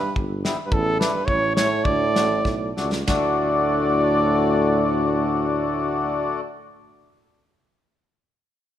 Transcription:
0.00 0.13 G2 medium
0.00 0.13 B4 medium
0.16 0.52 G1 medium
0.16 kick medium
0.44 0.56 G3 medium
0.44 0.57 B3 medium
0.44 0.57 E4 medium
0.44 snare medium
0.66 0.73 G2 medium
0.66 0.74 B4 medium
0.72 1.08 A1 medium
0.72 0.99 E2 medium
0.72 0.99 A4 loud
0.72 kick medium
1.00 1.28 G2 medium
1.00 1.12 A3 medium
1.00 1.12 D4 medium
1.00 1.13 E4 medium
1.00 1.27 B4 medium
1.00 snare medium
1.26 1.65 A1 medium
1.26 1.56 A2 medium
1.26 1.55 C#5 medium
1.26 kick medium
1.55 1.85 A2 medium
1.55 1.69 A3 medium
1.55 1.69 C#4 medium
1.55 1.70 E4 medium
1.55 1.86 C#5 loud
1.55 snare medium
1.84 2.05 D2 medium
1.84 2.77 A2 medium
1.84 2.76 D5 medium
1.84 kick medium
2.14 2.42 A1 medium
2.14 2.28 A3 medium
2.14 2.28 D4 medium
2.14 2.28 F#4 medium
2.14 snare medium
2.45 2.74 B1 medium
2.45 kick medium
2.45 snare soft
2.76 3.05 C#2 medium
2.76 2.90 A3 medium
2.76 2.91 D4 medium
2.76 2.91 F#4 medium
2.76 snare soft
2.92 snare medium
3.07 6.41 D2 loud
3.07 6.41 A2 medium
3.07 6.41 A3 medium
3.07 6.41 D4 medium
3.07 6.41 F#4 medium
3.07 6.40 D5 medium
3.07 kick medium
3.07 snare medium
3.07 ride bell medium

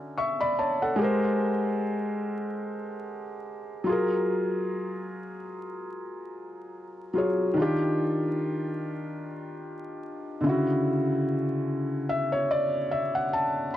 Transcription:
0.00 0.52 D3 medium
0.00 0.53 C#4 medium
0.00 0.54 F#4 medium
0.18 0.40 E5 medium
0.18 0.39 C#6 medium
0.40 0.57 D5 medium
0.40 0.57 B5 medium
0.59 0.81 C#5 soft
0.59 0.80 A5 medium
0.82 1.21 A4 medium
0.82 1.21 F#5 medium
0.96 3.81 G#3 medium
0.96 3.82 G4 medium
1.01 3.84 A#4 medium
1.01 3.85 C5 medium
3.84 7.10 F#3 medium
3.84 7.11 F4 medium
3.89 7.13 G#4 medium
3.89 7.14 A#4 medium
7.14 7.55 F#3 soft
7.14 7.56 F4 soft
7.14 7.57 G#4 soft
7.18 7.58 C#5 medium
7.54 10.39 D#3 medium
7.54 10.40 D4 medium
7.59 10.41 F4 medium
7.59 10.43 G4 medium
10.41 13.69 C#3 medium
10.41 13.67 D3 medium
10.47 13.70 E4 medium
10.47 13.71 F#4 medium
12.09 12.30 E5 medium
12.32 12.48 C#5 medium
12.51 12.88 D5 medium
12.91 13.13 E5 medium
13.15 13.31 F#5 medium
13.33 13.71 A5 medium

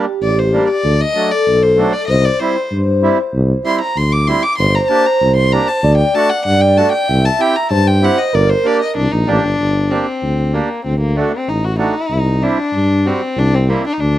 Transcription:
0.00 0.86 G4 medium
0.21 0.59 A1 medium
0.21 0.40 D5 medium
0.39 0.68 C5 medium
0.53 0.68 G3 medium
0.53 0.68 A#3 soft
0.53 0.69 D4 medium
0.69 1.02 D5 medium
0.84 1.03 D2 medium
0.84 2.11 A4 loud
1.01 1.33 D#5 loud
1.15 1.31 F#3 medium
1.15 1.30 A3 medium
1.15 1.31 D4 medium
1.31 1.64 D5 medium
1.47 1.84 B1 medium
1.63 1.94 C5 medium
1.77 1.93 F#3 medium
1.77 1.93 A3 medium
1.77 1.93 D4 medium
1.93 2.07 D5 loud
2.08 2.28 C2 loud
2.08 4.28 C5 loud
2.08 2.26 D#5 loud
2.25 2.41 D5 medium
2.40 2.56 G3 medium
2.40 2.56 C4 medium
2.40 2.56 E4 medium
2.40 2.71 C5 medium
2.71 3.09 G2 medium
3.02 3.18 G3 medium
3.02 3.18 C4 medium
3.02 3.18 E4 medium
3.34 3.53 C2 loud
3.64 3.80 G3 medium
3.64 3.80 C4 medium
3.64 3.81 E4 medium
3.64 3.80 C6 medium
3.81 3.99 A#5 medium
3.96 4.34 D2 medium
3.96 4.14 C6 medium
4.12 4.29 D6 medium
4.27 4.43 G3 medium
4.27 4.43 C4 soft
4.27 4.43 E4 medium
4.27 4.44 C6 medium
4.42 4.58 D6 loud
4.58 4.77 G1 loud
4.58 5.80 C5 loud
4.58 4.76 C6 loud
4.75 4.84 A#5 medium
4.84 4.90 A#5 medium
4.89 5.05 A#3 medium
4.89 5.05 D4 medium
4.89 5.06 G4 medium
4.89 5.07 A5 loud
5.06 5.36 A#5 loud
5.21 5.58 C2 medium
5.37 5.54 C6 medium
5.52 5.68 A#3 medium
5.52 5.68 D4 medium
5.52 5.68 G4 medium
5.52 5.69 A#5 loud
5.68 5.97 A5 medium
5.83 6.02 D2 loud
5.83 7.10 D5 loud
5.98 6.16 G5 medium
6.14 6.30 A3 medium
6.14 6.30 D4 medium
6.14 6.31 F#4 medium
6.14 6.31 A5 medium
6.30 6.45 F#5 loud
6.46 6.83 G2 medium
6.46 6.62 F#5 loud
6.61 6.79 G5 medium
6.77 6.93 A3 medium
6.77 6.93 D4 medium
6.77 6.93 F#4 medium
6.77 6.92 A5 loud
6.92 7.26 G5 loud
7.08 7.27 C2 loud
7.08 7.72 E5 loud
7.25 7.42 A5 medium
7.39 7.55 C4 medium
7.39 7.55 E4 medium
7.39 7.55 G4 medium
7.39 7.57 G5 loud
7.56 7.71 A#5 medium
7.71 8.08 G2 medium
7.71 8.33 C5 loud
7.71 7.89 A5 loud
7.87 8.06 G5 medium
8.02 8.18 C4 medium
8.02 8.18 E4 medium
8.02 8.18 G4 medium
8.02 8.20 F#5 medium
8.18 8.36 D#5 medium
8.33 8.52 G1 loud
8.33 9.23 A#4 loud
8.33 8.51 D5 medium
8.49 8.68 C5 medium
8.64 8.80 A#3 medium
8.64 8.81 D4 medium
8.64 8.81 G4 medium
8.64 8.81 D5 medium
8.81 8.96 D#5 medium
8.96 9.10 C2 medium
8.96 9.13 D4 medium
9.12 9.26 A#1 medium
9.12 9.30 D#4 medium
9.27 9.42 A1 loud
9.27 9.43 A#3 medium
9.27 9.43 D4 soft
9.27 9.93 D4 loud
9.27 9.44 G4 medium
9.43 9.58 G1 medium
9.59 9.97 G1 medium
9.90 10.06 A#3 medium
9.90 10.56 C4 medium
9.90 10.06 D4 medium
9.90 10.07 G4 medium
10.22 10.60 D2 medium
10.53 10.69 A#3 medium
10.53 10.84 A#3 medium
10.53 10.69 D4 soft
10.53 10.69 G4 medium
10.85 11.23 D2 medium
10.85 11.00 C4 medium
11.00 11.18 A#3 medium
11.16 11.32 A3 medium
11.16 11.31 A3 medium
11.16 11.32 D4 medium
11.16 11.32 F#4 medium
11.32 11.50 C4 medium
11.48 11.86 A1 medium
11.48 11.66 D#4 medium
11.64 11.79 F#4 medium
11.78 11.94 A3 medium
11.78 11.95 D4 soft
11.78 12.45 D#4 medium
11.78 11.95 F#4 medium
12.10 12.48 C2 medium
12.41 12.58 G3 medium
12.41 12.58 C4 medium
12.41 13.08 D4 medium
12.41 12.58 E4 medium
12.73 13.12 G2 medium
13.05 13.21 G3 soft
13.05 13.21 C4 soft
13.05 13.40 C4 medium
13.05 13.22 F#4 medium
13.37 13.75 C2 loud
13.37 13.56 D4 loud
13.54 13.71 C4 medium
13.68 13.84 G3 medium
13.68 13.85 A#3 medium
13.68 13.85 C4 medium
13.68 13.85 E4 medium
13.86 13.94 D4 medium
13.93 14.02 D#4 medium
14.00 14.19 D2 medium
14.00 14.19 D4 medium

